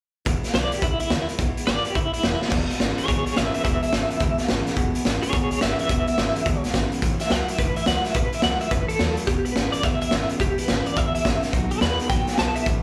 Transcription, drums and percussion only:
0.26 kick, closed hi-hat
0.44 snare, closed hi-hat
0.54 snare, closed hi-hat
0.72 closed hi-hat
0.82 kick, closed hi-hat
1.00 closed hi-hat
1.10 snare, closed hi-hat
1.29 closed hi-hat
1.39 kick, closed hi-hat
1.57 closed hi-hat
1.67 snare, closed hi-hat
1.85 closed hi-hat
1.95 kick, closed hi-hat
2.14 closed hi-hat
2.23 snare, closed hi-hat
2.42 snare
2.49 kick, snare, crash
2.70 closed hi-hat
2.80 snare, closed hi-hat
2.98 closed hi-hat
3.08 kick, closed hi-hat
3.26 closed hi-hat
3.36 snare, closed hi-hat
3.54 closed hi-hat
3.65 kick, closed hi-hat
3.83 closed hi-hat
3.93 snare, closed hi-hat
4.11 closed hi-hat
4.20 kick, closed hi-hat
4.38 snare, closed hi-hat
4.49 snare, closed hi-hat
4.67 snare, closed hi-hat
4.77 kick, closed hi-hat
4.95 closed hi-hat
5.05 snare, closed hi-hat
5.23 closed hi-hat
5.33 kick, closed hi-hat
5.51 closed hi-hat
5.61 snare, closed hi-hat
5.79 closed hi-hat
5.89 kick, closed hi-hat
6.07 closed hi-hat
6.18 snare, closed hi-hat
6.36 closed hi-hat
6.46 kick, closed hi-hat
6.64 snare, closed hi-hat
6.74 kick, snare, closed hi-hat
6.92 closed hi-hat
7.02 kick, closed hi-hat
7.20 snare, closed hi-hat
7.30 snare, closed hi-hat
7.48 closed hi-hat
7.58 kick, closed hi-hat
7.76 closed hi-hat
7.86 snare, closed hi-hat
8.05 snare, closed hi-hat
8.14 kick, closed hi-hat
8.33 closed hi-hat
8.42 snare, closed hi-hat
8.61 closed hi-hat
8.71 kick, closed hi-hat
8.89 closed hi-hat
8.99 snare, closed hi-hat
9.17 closed hi-hat
9.27 kick, closed hi-hat
9.45 closed hi-hat
9.56 snare, closed hi-hat
9.73 closed hi-hat
9.83 kick, snare, closed hi-hat
10.01 closed hi-hat
10.11 snare, closed hi-hat
10.29 closed hi-hat
10.40 kick, closed hi-hat
10.58 closed hi-hat
10.68 snare, closed hi-hat
10.86 closed hi-hat
10.97 kick, closed hi-hat
11.15 closed hi-hat
11.25 kick, snare, closed hi-hat
11.43 snare, closed hi-hat
11.53 kick, closed hi-hat
11.71 closed hi-hat
11.81 snare, closed hi-hat
11.99 closed hi-hat
12.10 kick, snare, closed hi-hat
12.27 snare, closed hi-hat
12.38 snare, closed hi-hat
12.56 closed hi-hat
12.66 kick, closed hi-hat

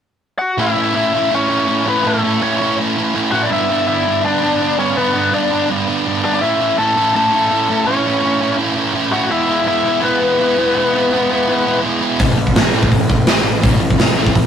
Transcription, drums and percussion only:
12.19 kick, open hi-hat
12.47 kick
12.56 snare, open hi-hat
12.83 kick
12.92 kick, open hi-hat
13.10 kick
13.27 snare, open hi-hat
13.63 kick, open hi-hat
13.90 kick
13.99 snare, open hi-hat
14.26 kick
14.35 kick, open hi-hat

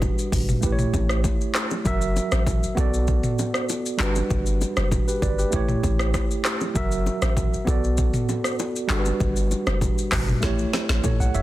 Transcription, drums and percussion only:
0.02 kick, high bongo, low conga, shaker
0.19 shaker
0.32 kick, mid tom, open hi-hat, high bongo, shaker
0.49 mid tom, shaker
0.63 kick, low conga, shaker
0.79 mid tom, shaker
0.94 kick, low bongo, shaker
1.09 cross-stick, shaker
1.24 kick, high bongo, shaker
1.41 shaker
1.55 cross-stick, clap, shaker
1.71 low bongo, shaker
1.86 kick, low conga, shaker
2.01 shaker
2.16 high bongo, low bongo, shaker
2.32 cross-stick, low bongo, shaker
2.47 kick, high bongo, low conga, shaker
2.63 shaker
2.77 kick, high bongo, shaker
2.94 shaker
3.07 kick, low conga, shaker
3.23 mid tom, shaker
3.39 low bongo, shaker
3.54 cross-stick, shaker
3.69 high bongo, shaker
3.86 shaker
4.00 clap, shaker
4.16 low bongo, shaker
4.30 kick, low conga, shaker
4.46 shaker
4.61 high bongo, low bongo, shaker
4.77 cross-stick, low bongo, shaker
4.92 kick, high bongo, low conga, shaker
5.08 shaker
5.22 kick, high bongo, shaker
5.39 shaker
5.52 kick, low conga, shaker
5.68 mid tom, shaker
5.83 kick, low bongo, shaker
5.99 cross-stick, shaker
6.14 kick, cross-stick, high bongo, shaker
6.31 shaker
6.45 cross-stick, clap, shaker
6.61 low bongo, shaker
6.76 kick, low conga, shaker
6.92 shaker
7.06 high bongo, low bongo, shaker
7.22 cross-stick, low bongo, shaker
7.37 kick, high bongo, low conga, shaker
7.54 shaker
7.67 kick, high bongo, shaker
7.84 shaker
7.98 kick, low conga, shaker
8.14 mid tom, shaker
8.29 low bongo, shaker
8.44 cross-stick, shaker
8.59 high bongo, shaker
8.76 shaker
8.90 clap, shaker
9.05 low bongo, shaker
9.20 kick, low conga, shaker
9.36 shaker
9.51 high bongo, low bongo, shaker
9.67 cross-stick, low bongo, shaker
9.81 kick, high bongo, low conga, shaker
9.98 shaker
10.12 kick, cross-stick, clap, mid tom, open hi-hat, high bongo, shaker
10.28 mid tom, shaker
10.42 kick, snare, low conga, shaker
10.59 shaker
10.73 snare, low bongo, shaker
10.89 snare, shaker
11.04 kick, mid tom, high bongo, shaker
11.21 shaker
11.35 floor tom, shaker

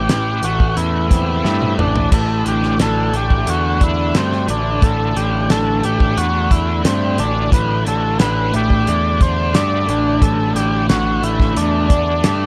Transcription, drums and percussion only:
0.09 snare, closed hi-hat
0.43 closed hi-hat
0.60 kick
0.77 closed hi-hat
1.11 kick, closed hi-hat
1.45 snare
1.62 high tom
1.79 mid tom
1.96 floor tom
2.12 kick, closed hi-hat, crash
2.46 closed hi-hat
2.63 snare
2.79 snare, closed hi-hat
3.14 closed hi-hat
3.30 kick
3.47 closed hi-hat
3.81 kick, closed hi-hat
4.15 snare, closed hi-hat
4.32 snare
4.48 closed hi-hat
4.82 kick, closed hi-hat
5.17 closed hi-hat
5.50 snare, closed hi-hat
5.83 closed hi-hat
6.00 kick
6.17 closed hi-hat
6.51 kick, closed hi-hat
6.85 snare, closed hi-hat
7.18 closed hi-hat
7.52 kick, closed hi-hat
7.87 closed hi-hat
8.19 snare, closed hi-hat
8.54 closed hi-hat
8.70 kick
8.87 closed hi-hat
9.21 kick, closed hi-hat
9.54 snare, closed hi-hat
9.89 closed hi-hat
10.22 kick, closed hi-hat
10.56 snare, closed hi-hat
10.89 snare, closed hi-hat
11.23 closed hi-hat
11.40 kick, snare
11.57 closed hi-hat
11.90 kick, closed hi-hat
12.24 snare, closed hi-hat

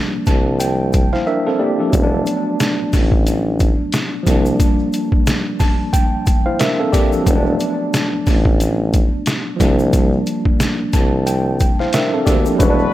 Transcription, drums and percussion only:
0.26 kick, closed hi-hat, shaker
0.60 closed hi-hat, shaker
0.93 kick, closed hi-hat, shaker
1.13 snare
1.93 kick, closed hi-hat, shaker
2.26 closed hi-hat, shaker
2.60 snare, closed hi-hat, shaker
2.93 kick, open hi-hat, shaker
3.12 kick
3.27 closed hi-hat, shaker
3.60 kick, closed hi-hat, shaker
3.92 snare, closed hi-hat, shaker
4.27 kick, closed hi-hat, shaker
4.46 shaker
4.60 kick, closed hi-hat, shaker
4.93 closed hi-hat, shaker
5.12 kick
5.27 snare, closed hi-hat, shaker
5.60 kick, open hi-hat, shaker
5.93 kick, closed hi-hat, shaker
6.26 kick, closed hi-hat, shaker
6.59 snare, closed hi-hat, shaker
6.93 kick, closed hi-hat, shaker
7.12 shaker
7.27 kick, closed hi-hat, shaker
7.60 closed hi-hat, shaker
7.94 snare, closed hi-hat, shaker
8.26 kick, open hi-hat, shaker
8.45 kick
8.60 closed hi-hat, shaker
8.93 kick, closed hi-hat, shaker
9.26 snare, closed hi-hat, shaker
9.60 kick, closed hi-hat, shaker
9.79 shaker
9.93 kick, closed hi-hat, shaker
10.26 closed hi-hat, shaker
10.45 kick
10.60 snare, closed hi-hat, shaker
10.93 kick, closed hi-hat, shaker
11.27 closed hi-hat, shaker
11.60 kick, closed hi-hat, shaker
11.79 snare
11.93 snare, closed hi-hat, shaker
12.27 kick, closed hi-hat, shaker
12.46 shaker
12.60 kick, closed hi-hat, shaker

